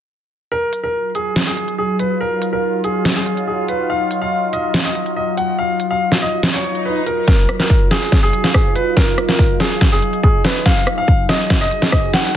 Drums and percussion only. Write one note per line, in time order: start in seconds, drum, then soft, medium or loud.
0.73 closed hi-hat medium
1.15 closed hi-hat medium
1.36 snare loud
1.57 closed hi-hat medium
1.68 closed hi-hat soft
1.99 closed hi-hat medium
2.42 closed hi-hat medium
2.84 closed hi-hat medium
3.05 snare loud
3.26 closed hi-hat medium
3.37 closed hi-hat soft
3.69 closed hi-hat medium
4.11 closed hi-hat medium
4.53 closed hi-hat medium
4.74 snare loud
4.95 closed hi-hat medium
5.06 closed hi-hat soft
5.37 closed hi-hat medium
5.80 closed hi-hat medium
6.12 snare soft
6.22 closed hi-hat medium
6.43 snare loud
6.64 closed hi-hat medium
6.75 closed hi-hat soft
7.07 closed hi-hat medium
7.28 kick medium
7.28 snare soft
7.49 cross-stick medium
7.49 closed hi-hat medium
7.60 snare soft
7.70 kick medium
7.91 snare soft
7.91 closed hi-hat medium
8.12 kick medium
8.12 snare soft
8.33 closed hi-hat medium
8.44 snare soft
8.44 closed hi-hat soft
8.54 kick medium
8.54 cross-stick medium
8.76 closed hi-hat medium
8.97 kick loud
8.97 snare soft
9.18 cross-stick medium
9.18 closed hi-hat medium
9.29 snare soft
9.39 kick medium
9.60 snare soft
9.60 closed hi-hat medium
9.81 kick loud
9.81 snare medium
10.02 closed hi-hat medium
10.13 closed hi-hat soft
10.23 kick medium
10.45 snare medium
10.45 closed hi-hat medium
10.66 kick loud
10.66 snare medium
10.87 cross-stick medium
10.87 closed hi-hat medium
11.08 kick medium
11.29 snare medium
11.29 closed hi-hat medium
11.50 kick loud
11.50 snare medium
11.71 closed hi-hat medium
11.82 snare medium
11.82 closed hi-hat soft
11.92 kick medium
11.92 cross-stick medium
12.14 snare medium
12.14 closed hi-hat medium